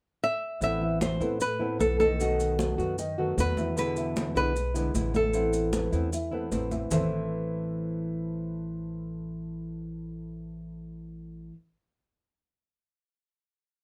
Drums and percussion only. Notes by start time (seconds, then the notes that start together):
0.62 high conga, maracas
0.81 high conga
1.01 high conga, maracas
1.21 high conga, maracas
1.40 high conga, maracas
1.61 high conga
1.80 high conga, maracas
2.00 high conga, maracas
2.19 high conga, maracas
2.39 high conga, maracas
2.59 high conga, maracas
2.79 high conga, maracas
2.98 high conga, maracas
3.19 high conga
3.38 high conga, maracas
3.57 high conga, maracas
3.77 high conga, maracas
3.96 high conga, maracas
4.16 high conga, maracas
4.36 maracas
4.56 high conga, maracas
4.75 high conga, maracas
4.95 high conga, maracas
5.14 high conga, maracas
5.34 high conga, maracas
5.53 high conga, maracas
5.73 high conga, maracas
5.93 high conga, maracas
6.12 high conga, maracas
6.32 high conga
6.52 high conga, maracas
6.71 high conga, maracas
6.91 low conga, maracas